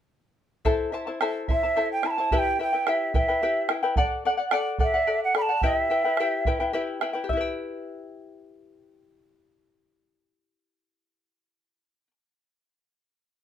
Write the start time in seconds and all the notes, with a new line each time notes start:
0.65 E4 A4 C5 E5 A5, bombo low
0.92 E4 C5 E5 A5
1.07 E4 C5 A5, bombo rim
1.21 E4 A4 C5 E5 A5, bombo rim
1.48 E4 C5 E5 A5, bombo low
1.63 E4 C5 A5, bombo rim
1.76 E4 A4 C5 E5 A5, bombo rim
1.92 G5
2.03 E4 C5 E5 A5 B5, bombo rim
2.11 A5
2.17 E4 C5 A5, bombo rim
2.31 E4 G4 B4 E5 G5 A5, bombo low
2.38 G5
2.59 E4 B4 E5 G5
2.73 E4 B4 G5
2.87 E4 G4 B4 E5 G5, bombo rim
3.14 E4 B4 E5 G5, bombo low
3.28 E4 B4 G5, bombo rim
3.42 E4 G4 B4 E5 G5, bombo rim
3.69 E4 B4 E5 G5, bombo rim
3.83 E4 B4 G5, bombo rim
3.96 A4 D5 F#5, bombo low
4.25 A4 D5 F#5
4.37 D5 F#5
4.51 A4 D5 F#5, bombo rim
4.79 A4 D5 F#5, bombo low
4.83 E5
4.93 D5 F#5, bombo rim
5.07 A4 D5 F#5, bombo rim
5.24 F#5
5.35 A4 D5 F#5 B5, bombo rim
5.42 A5
5.49 D5 F#5, bombo rim
5.62 E4 G4 B4 D#5 E5 G5, bombo rim, bombo low
5.76 E5, bombo rim
5.90 E4 B4 E5 G5
6.04 E4 B4 G5
6.17 E4 G4 B4 E5 G5, bombo rim
6.45 E4 B4 E5 G5, bombo low
6.60 E4 B4 G5, bombo rim
6.73 E4 G4 B4 E5 G5
7.01 E4 B4 E5 G5, bombo rim
7.13 E4 B4 G5, bombo rim
7.24 G4
7.29 E4 E5, bombo low
7.37 B4 G5